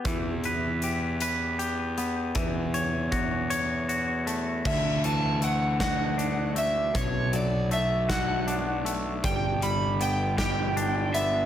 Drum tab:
CC |------|------|x-----|------|
HH |xxxxxx|xxxxxx|-xxxxx|xxxxxx|
SD |------|------|---o--|---o--|
BD |o-----|o-o---|o--o--|o--o--|

CC |------|
HH |xxxxxx|
SD |---o--|
BD |o--o--|